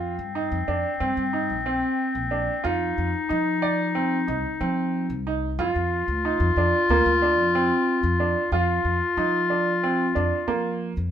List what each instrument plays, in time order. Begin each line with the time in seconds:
Already playing: upright bass F2, clarinet C4, grand piano F4
0.19 upright bass G2
0.35 grand piano D#4
0.52 upright bass F2
0.68 upright bass F2, grand piano D4
1.00 upright bass G2, grand piano C4
1.17 upright bass G2
1.33 grand piano D#4
1.50 upright bass A#1
1.66 grand piano C4
2.15 upright bass A#1
2.31 grand piano D4
2.64 upright bass F2, clarinet D#4, grand piano F4
2.98 upright bass F2
3.29 upright bass F3, grand piano D#4
3.62 grand piano D5
3.95 grand piano C4
4.28 upright bass C2, grand piano D#4
4.61 upright bass F3, grand piano C4
5.10 upright bass C2
5.27 grand piano D#4
5.59 upright bass F2, grand piano F4, clarinet F4
5.75 upright bass F2
6.08 upright bass D2
6.25 grand piano D#4
6.40 upright bass F2
6.56 upright bass F2, grand piano D4
6.89 upright bass D2, grand piano A#3
7.06 upright bass D2
7.22 grand piano D4
7.39 upright bass F2
7.55 grand piano C4
8.03 upright bass F2
8.20 grand piano D4
8.52 upright bass F2, grand piano F4, clarinet F4
8.85 upright bass F2
9.17 upright bass F3, grand piano D#4
9.50 grand piano D4
9.83 grand piano C4
10.15 upright bass F2, grand piano D4
10.48 upright bass F3, grand piano A#3
10.97 upright bass F2